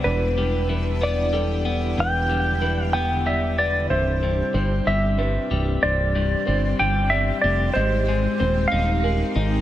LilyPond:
<<
  \new Staff \with { instrumentName = "Electric slide guitar" } { \time 6/8 \key c \major \tempo 4. = 62 b'4. d''4. | g''4. g''8 e''8 d''8 | c''4. e''4. | d''4. g''8 e''8 d''8 |
c''4. f''4. | }
  \new Staff \with { instrumentName = "Felt piano" } { \time 6/8 \key c \major d''4 b'4 a'4 | b'4 b'4 d''4 | e''4 c''4 b'4 | c''4 c''4 d''4 |
ees''4 c''4 bes'4 | }
  \new Staff \with { instrumentName = "Ambient pad" } { \time 6/8 \key c \major << { <e' g'>2.~ | <e' g'>2. | <c' g'>2.~ | <c' g'>2.~ |
<c' g'>2. | } \\ { <d d'>2.~ | <d d'>2. | <e g>2.~ | <e g>2. |
<ees aes>2. | } >> }
  \new Staff \with { instrumentName = "Clean electric guitar" } { \clef bass \time 6/8 \key c \major e,8 g8 e8 b8 g8 b8 | e,8 g8 e8 b8 g8 b8 | c,8 g,8 c8 g8 g,8 g8 | c,8 g,8 c8 g8 g,8 g8 |
aes,8 aes8 c'8 ees'8 aes8 ees'8 | }
  \new Staff \with { instrumentName = "Picked electric bass" } { \clef bass \time 6/8 \key c \major e,,2. | e,,2. | c,,4 g,,8 g,,4 c,,8 | c,,4 g,,8 g,,4 f,,8 |
aes,,4 ees,,8 ees,,4 aes,,8 | }
>>